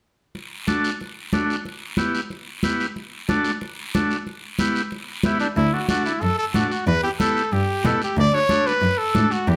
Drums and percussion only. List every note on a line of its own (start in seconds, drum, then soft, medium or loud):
0.35 high conga soft
0.35 long guiro medium
0.67 high conga medium
0.67 short guiro medium
0.84 short guiro medium
1.01 high conga soft
1.01 long guiro medium
1.33 high conga medium
1.33 short guiro medium
1.50 short guiro medium
1.65 high conga soft
1.65 long guiro medium
1.97 high conga medium
1.97 short guiro medium
2.15 short guiro medium
2.30 high conga soft
2.30 long guiro medium
2.63 high conga medium
2.63 short guiro medium
2.80 short guiro medium
2.96 high conga soft
2.96 long guiro medium
3.29 high conga medium
3.29 short guiro medium
3.44 short guiro medium
3.61 high conga soft
3.61 long guiro medium
3.94 high conga medium
3.94 short guiro medium
4.11 short guiro medium
4.27 high conga soft
4.27 long guiro medium
4.59 high conga medium
4.59 short guiro medium
4.76 short guiro medium
4.91 high conga soft
4.91 long guiro medium
5.23 high conga medium
5.23 short guiro medium
5.40 short guiro medium
5.56 high conga soft
5.56 long guiro medium
5.89 high conga medium
5.89 short guiro medium
6.06 short guiro medium
6.22 high conga soft
6.22 long guiro medium
6.54 high conga medium
6.54 short guiro medium
6.72 short guiro medium
6.86 high conga soft
6.86 long guiro medium
7.20 high conga medium
7.20 short guiro medium
7.37 short guiro medium
7.53 high conga soft
7.53 long guiro medium
7.85 high conga medium
7.85 short guiro medium
8.02 short guiro medium
8.17 high conga soft
8.17 long guiro medium
8.49 high conga medium
8.49 short guiro medium
8.67 short guiro medium
8.82 high conga soft
8.82 long guiro medium
9.15 high conga medium
9.15 short guiro medium
9.31 short guiro medium
9.48 high conga soft
9.48 long guiro medium